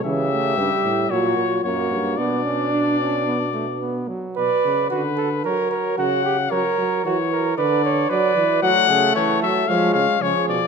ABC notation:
X:1
M:4/4
L:1/8
Q:1/4=113
K:Bm
V:1 name="Trumpet"
e4 c2 c2 | d6- d z | d2 B2 c2 f2 | c2 c2 d2 B2 |
f2 c e ^e e c d |]
V:2 name="Flugelhorn"
G4 F2 F2 | D6- D z | B2 F A ^A A F G | ^A2 F A B c d2 |
F ^G A2 c2 G2 |]
V:3 name="Trombone"
E, A, G,2 F,2 ^A,2 | B, C D C B, A, B, F, | z8 | z8 |
A,4 ^G,2 ^E,2 |]
V:4 name="Bass trombone" clef=bass
C,2 G,, A,, ^A,, A,, F,, G,, | B,,6- B,, z | B,, C, D,2 F,2 C,2 | F, F, E,2 D,2 F, E, |
F, C, E, F, ^E, C, C, B,, |]